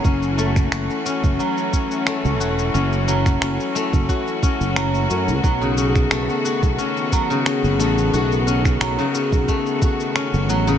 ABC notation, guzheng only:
X:1
M:4/4
L:1/16
Q:"Swing 16ths" 1/4=89
K:F#dor
V:1 name="Guzheng"
C z A, z F z C z F, z C z A, z F z | C z F, z C z A, z F z C z F, z C z | F, C, C z A, z F z C z F, C, C z A, z | F z C z F, C, C z A, z F z C z F, C, |]